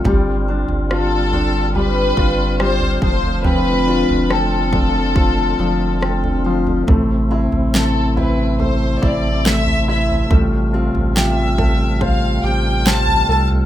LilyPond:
<<
  \new Staff \with { instrumentName = "Violin section" } { \time 4/4 \key a \minor \tempo 4 = 70 r4 a'4 b'4 c''8 c''8 | b'4 a'2~ a'8 r8 | r4 a'8 b'8 c''8 d''8 e''8 e''8 | r4 e''4 f''8 g''8 a''8 a''8 | }
  \new Staff \with { instrumentName = "Grand piano" } { \time 4/4 \key a \minor g8 d'8 f'8 d'8 g8 f'8 g8 f8 | c'8 f'8 c'8 f8 f'8 f8 c'8 f8 | a8 e'8 a8 e'8 a8 e'8 a8 e'8 | a8 f'8 g'8 a'8 c''8 g'8 c''8 a'8 | }
  \new Staff \with { instrumentName = "Steel-string acoustic guitar" } { \time 4/4 \key a \minor g8 d'8 f'8 d'4 d'8 f'8 f8 | f8 d'8 a'8 d'8 c''8 d'8 a'8 c''8 | a,8 c'8 e'8 c'4 c'8 e'8 b'8 | a,8 c'8 f'8 c'8 a'8 c'8 f'8 a'8 | }
  \new Staff \with { instrumentName = "Tonewheel organ" } { \time 4/4 \key a \minor <c' f'>1~ | <c' f'>1 | <c' e'>1 | f'1 | }
  \new Staff \with { instrumentName = "Tonewheel organ" } { \clef bass \time 4/4 \key a \minor << { g2.~ g8 a8~ | a1~ | a1 | g1 | } \\ { d1~ | d1 | c1~ | c1 | } >> }
  \new Staff \with { instrumentName = "Sub bass" } { \clef bass \time 4/4 \key a \minor g,,8. g,,4.~ g,,16 g,,4 f,,8~ | f,,8. f,,4.~ f,,16 f,,4. | a,,8. a,,4.~ a,,16 a,,4. | a,,8. a,,4.~ a,,16 a,,4 c,8 | }
  \new DrumStaff \with { instrumentName = "Drums" } \drummode { \time 4/4 <bd tomfh>8. tomfh16 ss8 tomfh8 tomfh8 bd8 ss16 tomfh16 bd16 tomfh16 | tomfh8. tomfh16 ss8 <bd tomfh>8 <bd tomfh>4 ss16 tomfh8 tomfh16 | <bd tomfh>8. tomfh16 sn8 tomfh8 tomfh8 bd8 sn16 tomfh8 tomfh16 | <bd tomfh>8. tomfh16 sn8 <bd tomfh>8 <bd tomfh>4 sn16 tomfh8 tomfh16 | }
>>